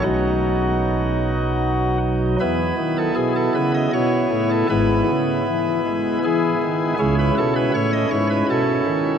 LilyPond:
<<
  \new Staff \with { instrumentName = "Pipe organ" } { \time 3/4 \key e \major \tempo 4 = 79 << { fis'2~ fis'8 r8 | b'8. a'16 gis'16 a'16 b'16 dis''16 cis''8. a'16 | b'2 gis'4 | gis'16 b'16 a'16 b'16 cis''16 dis''16 cis''16 b'16 a'4 | } \\ { <b, fis dis'>2. | <b e'>2. | <b e'>2. | <cis' e'>2. | } >> }
  \new Staff \with { instrumentName = "Pipe organ" } { \clef bass \time 3/4 \key e \major b,,2. | <e, e>8 dis8 b,8 cis8 b,8 a,8 | <gis,, gis,>8 cis8 e8 gis8 e8 dis8 | <cis, cis>8 b,8 a,8 gis,8 b,8 dis8 | }
>>